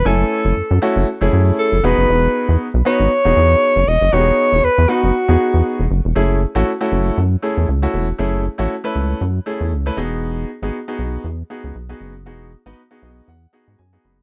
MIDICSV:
0, 0, Header, 1, 4, 480
1, 0, Start_track
1, 0, Tempo, 508475
1, 54, Time_signature, 4, 2, 24, 8
1, 13429, End_track
2, 0, Start_track
2, 0, Title_t, "Alto saxophone"
2, 0, Program_c, 0, 65
2, 64, Note_on_c, 0, 69, 92
2, 779, Note_off_c, 0, 69, 0
2, 1501, Note_on_c, 0, 69, 100
2, 1746, Note_on_c, 0, 71, 121
2, 1760, Note_off_c, 0, 69, 0
2, 2460, Note_off_c, 0, 71, 0
2, 2709, Note_on_c, 0, 73, 119
2, 3666, Note_on_c, 0, 75, 105
2, 3680, Note_off_c, 0, 73, 0
2, 3902, Note_on_c, 0, 73, 122
2, 3916, Note_off_c, 0, 75, 0
2, 4381, Note_on_c, 0, 71, 107
2, 4396, Note_off_c, 0, 73, 0
2, 4617, Note_on_c, 0, 66, 97
2, 4631, Note_off_c, 0, 71, 0
2, 5575, Note_off_c, 0, 66, 0
2, 13429, End_track
3, 0, Start_track
3, 0, Title_t, "Grand piano"
3, 0, Program_c, 1, 0
3, 48, Note_on_c, 1, 57, 78
3, 52, Note_on_c, 1, 61, 70
3, 53, Note_on_c, 1, 64, 73
3, 57, Note_on_c, 1, 80, 90
3, 492, Note_off_c, 1, 57, 0
3, 494, Note_off_c, 1, 61, 0
3, 494, Note_off_c, 1, 64, 0
3, 496, Note_off_c, 1, 80, 0
3, 772, Note_on_c, 1, 57, 90
3, 775, Note_on_c, 1, 61, 85
3, 777, Note_on_c, 1, 64, 78
3, 780, Note_on_c, 1, 66, 104
3, 993, Note_off_c, 1, 57, 0
3, 995, Note_off_c, 1, 61, 0
3, 996, Note_off_c, 1, 64, 0
3, 997, Note_off_c, 1, 66, 0
3, 1141, Note_on_c, 1, 57, 81
3, 1146, Note_on_c, 1, 61, 84
3, 1147, Note_on_c, 1, 64, 83
3, 1150, Note_on_c, 1, 68, 97
3, 1650, Note_off_c, 1, 57, 0
3, 1652, Note_off_c, 1, 61, 0
3, 1652, Note_off_c, 1, 64, 0
3, 1654, Note_off_c, 1, 68, 0
3, 1734, Note_on_c, 1, 59, 87
3, 1738, Note_on_c, 1, 63, 76
3, 1740, Note_on_c, 1, 66, 77
3, 1744, Note_on_c, 1, 68, 89
3, 2508, Note_off_c, 1, 59, 0
3, 2510, Note_off_c, 1, 63, 0
3, 2511, Note_off_c, 1, 66, 0
3, 2513, Note_off_c, 1, 68, 0
3, 2692, Note_on_c, 1, 59, 81
3, 2698, Note_on_c, 1, 63, 72
3, 2699, Note_on_c, 1, 66, 74
3, 2703, Note_on_c, 1, 71, 89
3, 2913, Note_off_c, 1, 59, 0
3, 2916, Note_off_c, 1, 63, 0
3, 2917, Note_off_c, 1, 66, 0
3, 2919, Note_off_c, 1, 71, 0
3, 3066, Note_on_c, 1, 59, 70
3, 3068, Note_on_c, 1, 63, 68
3, 3072, Note_on_c, 1, 66, 64
3, 3076, Note_on_c, 1, 68, 82
3, 3572, Note_off_c, 1, 59, 0
3, 3573, Note_off_c, 1, 63, 0
3, 3575, Note_off_c, 1, 66, 0
3, 3577, Note_off_c, 1, 68, 0
3, 3893, Note_on_c, 1, 59, 80
3, 3897, Note_on_c, 1, 63, 72
3, 3897, Note_on_c, 1, 66, 71
3, 3903, Note_on_c, 1, 67, 68
3, 3959, Note_on_c, 1, 68, 84
3, 3963, Note_off_c, 1, 67, 0
3, 4335, Note_off_c, 1, 59, 0
3, 4336, Note_off_c, 1, 63, 0
3, 4337, Note_off_c, 1, 66, 0
3, 4368, Note_off_c, 1, 68, 0
3, 4613, Note_on_c, 1, 59, 77
3, 4617, Note_on_c, 1, 63, 69
3, 4618, Note_on_c, 1, 66, 75
3, 4622, Note_on_c, 1, 71, 86
3, 4834, Note_off_c, 1, 59, 0
3, 4836, Note_off_c, 1, 63, 0
3, 4836, Note_off_c, 1, 66, 0
3, 4838, Note_off_c, 1, 71, 0
3, 4988, Note_on_c, 1, 59, 74
3, 4991, Note_on_c, 1, 63, 68
3, 4992, Note_on_c, 1, 66, 66
3, 4997, Note_on_c, 1, 68, 79
3, 5493, Note_off_c, 1, 59, 0
3, 5494, Note_off_c, 1, 63, 0
3, 5495, Note_off_c, 1, 66, 0
3, 5497, Note_off_c, 1, 68, 0
3, 5809, Note_on_c, 1, 57, 83
3, 5812, Note_on_c, 1, 61, 76
3, 5814, Note_on_c, 1, 64, 83
3, 5816, Note_on_c, 1, 68, 104
3, 6032, Note_off_c, 1, 57, 0
3, 6033, Note_off_c, 1, 61, 0
3, 6035, Note_off_c, 1, 64, 0
3, 6036, Note_off_c, 1, 68, 0
3, 6183, Note_on_c, 1, 57, 97
3, 6185, Note_on_c, 1, 61, 80
3, 6188, Note_on_c, 1, 64, 86
3, 6191, Note_on_c, 1, 66, 105
3, 6320, Note_off_c, 1, 57, 0
3, 6321, Note_off_c, 1, 61, 0
3, 6322, Note_off_c, 1, 64, 0
3, 6323, Note_off_c, 1, 66, 0
3, 6425, Note_on_c, 1, 57, 96
3, 6426, Note_on_c, 1, 61, 82
3, 6429, Note_on_c, 1, 64, 88
3, 6430, Note_on_c, 1, 66, 99
3, 6776, Note_off_c, 1, 57, 0
3, 6776, Note_off_c, 1, 61, 0
3, 6778, Note_off_c, 1, 64, 0
3, 6778, Note_off_c, 1, 66, 0
3, 7009, Note_on_c, 1, 57, 83
3, 7012, Note_on_c, 1, 61, 83
3, 7013, Note_on_c, 1, 64, 75
3, 7015, Note_on_c, 1, 68, 91
3, 7232, Note_off_c, 1, 57, 0
3, 7233, Note_off_c, 1, 61, 0
3, 7234, Note_off_c, 1, 64, 0
3, 7235, Note_off_c, 1, 68, 0
3, 7386, Note_on_c, 1, 57, 82
3, 7386, Note_on_c, 1, 61, 81
3, 7391, Note_on_c, 1, 64, 86
3, 7393, Note_on_c, 1, 66, 101
3, 7602, Note_off_c, 1, 57, 0
3, 7602, Note_off_c, 1, 61, 0
3, 7605, Note_off_c, 1, 64, 0
3, 7606, Note_off_c, 1, 66, 0
3, 7726, Note_on_c, 1, 57, 84
3, 7730, Note_on_c, 1, 61, 85
3, 7733, Note_on_c, 1, 64, 82
3, 7733, Note_on_c, 1, 68, 97
3, 7951, Note_off_c, 1, 57, 0
3, 7952, Note_off_c, 1, 61, 0
3, 7954, Note_off_c, 1, 64, 0
3, 7954, Note_off_c, 1, 68, 0
3, 8100, Note_on_c, 1, 57, 88
3, 8104, Note_on_c, 1, 61, 88
3, 8106, Note_on_c, 1, 64, 86
3, 8109, Note_on_c, 1, 66, 95
3, 8238, Note_off_c, 1, 57, 0
3, 8240, Note_off_c, 1, 61, 0
3, 8241, Note_off_c, 1, 64, 0
3, 8242, Note_off_c, 1, 66, 0
3, 8344, Note_on_c, 1, 57, 93
3, 8345, Note_on_c, 1, 61, 84
3, 8349, Note_on_c, 1, 64, 85
3, 8352, Note_on_c, 1, 71, 102
3, 8695, Note_off_c, 1, 57, 0
3, 8696, Note_off_c, 1, 61, 0
3, 8698, Note_off_c, 1, 64, 0
3, 8699, Note_off_c, 1, 71, 0
3, 8930, Note_on_c, 1, 57, 91
3, 8934, Note_on_c, 1, 61, 78
3, 8936, Note_on_c, 1, 64, 76
3, 8939, Note_on_c, 1, 68, 98
3, 9153, Note_off_c, 1, 57, 0
3, 9154, Note_off_c, 1, 61, 0
3, 9155, Note_off_c, 1, 64, 0
3, 9157, Note_off_c, 1, 68, 0
3, 9307, Note_on_c, 1, 57, 94
3, 9310, Note_on_c, 1, 61, 81
3, 9314, Note_on_c, 1, 64, 86
3, 9315, Note_on_c, 1, 71, 105
3, 9413, Note_off_c, 1, 57, 0
3, 9413, Note_on_c, 1, 59, 97
3, 9415, Note_off_c, 1, 61, 0
3, 9415, Note_on_c, 1, 63, 91
3, 9417, Note_off_c, 1, 64, 0
3, 9417, Note_off_c, 1, 71, 0
3, 9418, Note_on_c, 1, 66, 84
3, 9420, Note_on_c, 1, 68, 110
3, 9893, Note_off_c, 1, 59, 0
3, 9894, Note_off_c, 1, 63, 0
3, 9896, Note_off_c, 1, 66, 0
3, 9897, Note_off_c, 1, 68, 0
3, 10032, Note_on_c, 1, 59, 91
3, 10035, Note_on_c, 1, 63, 79
3, 10038, Note_on_c, 1, 66, 77
3, 10039, Note_on_c, 1, 68, 98
3, 10164, Note_off_c, 1, 59, 0
3, 10165, Note_off_c, 1, 63, 0
3, 10167, Note_off_c, 1, 66, 0
3, 10168, Note_off_c, 1, 68, 0
3, 10271, Note_on_c, 1, 59, 95
3, 10272, Note_on_c, 1, 63, 83
3, 10273, Note_on_c, 1, 66, 82
3, 10277, Note_on_c, 1, 68, 98
3, 10619, Note_off_c, 1, 59, 0
3, 10619, Note_off_c, 1, 63, 0
3, 10620, Note_off_c, 1, 66, 0
3, 10622, Note_off_c, 1, 68, 0
3, 10856, Note_on_c, 1, 59, 86
3, 10857, Note_on_c, 1, 63, 73
3, 10861, Note_on_c, 1, 66, 77
3, 10864, Note_on_c, 1, 68, 99
3, 11076, Note_off_c, 1, 59, 0
3, 11076, Note_off_c, 1, 63, 0
3, 11078, Note_off_c, 1, 66, 0
3, 11079, Note_off_c, 1, 68, 0
3, 11227, Note_on_c, 1, 59, 93
3, 11231, Note_on_c, 1, 63, 79
3, 11234, Note_on_c, 1, 66, 82
3, 11236, Note_on_c, 1, 68, 100
3, 11443, Note_off_c, 1, 59, 0
3, 11445, Note_off_c, 1, 63, 0
3, 11446, Note_off_c, 1, 66, 0
3, 11447, Note_off_c, 1, 68, 0
3, 11573, Note_on_c, 1, 59, 84
3, 11577, Note_on_c, 1, 63, 79
3, 11579, Note_on_c, 1, 66, 86
3, 11582, Note_on_c, 1, 68, 96
3, 11794, Note_off_c, 1, 59, 0
3, 11796, Note_off_c, 1, 63, 0
3, 11797, Note_off_c, 1, 66, 0
3, 11798, Note_off_c, 1, 68, 0
3, 11951, Note_on_c, 1, 59, 94
3, 11953, Note_on_c, 1, 63, 88
3, 11954, Note_on_c, 1, 66, 80
3, 11956, Note_on_c, 1, 71, 92
3, 12083, Note_off_c, 1, 59, 0
3, 12084, Note_off_c, 1, 63, 0
3, 12085, Note_off_c, 1, 66, 0
3, 12086, Note_off_c, 1, 71, 0
3, 12185, Note_on_c, 1, 59, 92
3, 12187, Note_on_c, 1, 63, 86
3, 12191, Note_on_c, 1, 66, 83
3, 12194, Note_on_c, 1, 68, 97
3, 12300, Note_on_c, 1, 75, 71
3, 12520, Note_off_c, 1, 75, 0
3, 12536, Note_off_c, 1, 59, 0
3, 12537, Note_off_c, 1, 63, 0
3, 12539, Note_off_c, 1, 66, 0
3, 12540, Note_off_c, 1, 68, 0
3, 12542, Note_on_c, 1, 78, 74
3, 12760, Note_off_c, 1, 78, 0
3, 12771, Note_on_c, 1, 59, 85
3, 12774, Note_on_c, 1, 63, 78
3, 12774, Note_on_c, 1, 78, 71
3, 12777, Note_on_c, 1, 66, 80
3, 12777, Note_on_c, 1, 68, 96
3, 12993, Note_off_c, 1, 59, 0
3, 12995, Note_off_c, 1, 63, 0
3, 12996, Note_off_c, 1, 66, 0
3, 12996, Note_off_c, 1, 68, 0
3, 12997, Note_off_c, 1, 78, 0
3, 13015, Note_on_c, 1, 80, 71
3, 13148, Note_on_c, 1, 59, 82
3, 13150, Note_on_c, 1, 63, 78
3, 13151, Note_on_c, 1, 66, 76
3, 13154, Note_on_c, 1, 68, 93
3, 13238, Note_off_c, 1, 80, 0
3, 13261, Note_on_c, 1, 83, 73
3, 13363, Note_off_c, 1, 59, 0
3, 13364, Note_off_c, 1, 63, 0
3, 13365, Note_off_c, 1, 66, 0
3, 13366, Note_off_c, 1, 68, 0
3, 13429, Note_off_c, 1, 83, 0
3, 13429, End_track
4, 0, Start_track
4, 0, Title_t, "Analog synth bass"
4, 0, Program_c, 2, 38
4, 52, Note_on_c, 2, 30, 105
4, 230, Note_off_c, 2, 30, 0
4, 425, Note_on_c, 2, 30, 100
4, 504, Note_off_c, 2, 30, 0
4, 536, Note_on_c, 2, 42, 51
4, 589, Note_off_c, 2, 42, 0
4, 669, Note_on_c, 2, 42, 96
4, 747, Note_off_c, 2, 42, 0
4, 911, Note_on_c, 2, 30, 100
4, 988, Note_off_c, 2, 30, 0
4, 1148, Note_on_c, 2, 30, 101
4, 1226, Note_off_c, 2, 30, 0
4, 1255, Note_on_c, 2, 42, 105
4, 1432, Note_off_c, 2, 42, 0
4, 1628, Note_on_c, 2, 30, 82
4, 1706, Note_off_c, 2, 30, 0
4, 1734, Note_on_c, 2, 28, 98
4, 1833, Note_off_c, 2, 28, 0
4, 1869, Note_on_c, 2, 30, 93
4, 1947, Note_off_c, 2, 30, 0
4, 1977, Note_on_c, 2, 28, 96
4, 2153, Note_off_c, 2, 28, 0
4, 2349, Note_on_c, 2, 40, 96
4, 2427, Note_off_c, 2, 40, 0
4, 2589, Note_on_c, 2, 35, 89
4, 2667, Note_off_c, 2, 35, 0
4, 2831, Note_on_c, 2, 32, 82
4, 2908, Note_off_c, 2, 32, 0
4, 3073, Note_on_c, 2, 28, 111
4, 3149, Note_off_c, 2, 28, 0
4, 3178, Note_on_c, 2, 40, 98
4, 3354, Note_off_c, 2, 40, 0
4, 3553, Note_on_c, 2, 30, 97
4, 3629, Note_off_c, 2, 30, 0
4, 3658, Note_on_c, 2, 28, 95
4, 3756, Note_off_c, 2, 28, 0
4, 3790, Note_on_c, 2, 30, 91
4, 3867, Note_off_c, 2, 30, 0
4, 3899, Note_on_c, 2, 28, 100
4, 4074, Note_off_c, 2, 28, 0
4, 4273, Note_on_c, 2, 28, 96
4, 4349, Note_off_c, 2, 28, 0
4, 4379, Note_on_c, 2, 40, 49
4, 4431, Note_off_c, 2, 40, 0
4, 4515, Note_on_c, 2, 40, 105
4, 4591, Note_off_c, 2, 40, 0
4, 4754, Note_on_c, 2, 30, 96
4, 4830, Note_off_c, 2, 30, 0
4, 4992, Note_on_c, 2, 40, 115
4, 5069, Note_off_c, 2, 40, 0
4, 5230, Note_on_c, 2, 40, 94
4, 5308, Note_off_c, 2, 40, 0
4, 5471, Note_on_c, 2, 28, 93
4, 5548, Note_off_c, 2, 28, 0
4, 5576, Note_on_c, 2, 30, 95
4, 5674, Note_off_c, 2, 30, 0
4, 5713, Note_on_c, 2, 28, 89
4, 5789, Note_off_c, 2, 28, 0
4, 5817, Note_on_c, 2, 30, 98
4, 6092, Note_off_c, 2, 30, 0
4, 6188, Note_on_c, 2, 33, 90
4, 6266, Note_off_c, 2, 33, 0
4, 6534, Note_on_c, 2, 30, 101
4, 6711, Note_off_c, 2, 30, 0
4, 6775, Note_on_c, 2, 42, 101
4, 6952, Note_off_c, 2, 42, 0
4, 7151, Note_on_c, 2, 40, 84
4, 7228, Note_off_c, 2, 40, 0
4, 7255, Note_on_c, 2, 37, 87
4, 7432, Note_off_c, 2, 37, 0
4, 7496, Note_on_c, 2, 28, 97
4, 7672, Note_off_c, 2, 28, 0
4, 7736, Note_on_c, 2, 30, 98
4, 8012, Note_off_c, 2, 30, 0
4, 8112, Note_on_c, 2, 33, 88
4, 8189, Note_off_c, 2, 33, 0
4, 8454, Note_on_c, 2, 37, 95
4, 8631, Note_off_c, 2, 37, 0
4, 8696, Note_on_c, 2, 42, 104
4, 8873, Note_off_c, 2, 42, 0
4, 9069, Note_on_c, 2, 40, 84
4, 9177, Note_on_c, 2, 37, 100
4, 9191, Note_off_c, 2, 40, 0
4, 9353, Note_off_c, 2, 37, 0
4, 9415, Note_on_c, 2, 28, 101
4, 9868, Note_off_c, 2, 28, 0
4, 10030, Note_on_c, 2, 32, 85
4, 10107, Note_off_c, 2, 32, 0
4, 10374, Note_on_c, 2, 35, 100
4, 10551, Note_off_c, 2, 35, 0
4, 10613, Note_on_c, 2, 40, 103
4, 10791, Note_off_c, 2, 40, 0
4, 10989, Note_on_c, 2, 37, 96
4, 11067, Note_off_c, 2, 37, 0
4, 11095, Note_on_c, 2, 35, 93
4, 11272, Note_off_c, 2, 35, 0
4, 11335, Note_on_c, 2, 30, 97
4, 11577, Note_on_c, 2, 28, 111
4, 11591, Note_off_c, 2, 30, 0
4, 11852, Note_off_c, 2, 28, 0
4, 11951, Note_on_c, 2, 32, 90
4, 12028, Note_off_c, 2, 32, 0
4, 12297, Note_on_c, 2, 35, 100
4, 12473, Note_off_c, 2, 35, 0
4, 12536, Note_on_c, 2, 40, 95
4, 12713, Note_off_c, 2, 40, 0
4, 12912, Note_on_c, 2, 44, 88
4, 12989, Note_off_c, 2, 44, 0
4, 13022, Note_on_c, 2, 42, 95
4, 13196, Note_off_c, 2, 42, 0
4, 13261, Note_on_c, 2, 30, 96
4, 13429, Note_off_c, 2, 30, 0
4, 13429, End_track
0, 0, End_of_file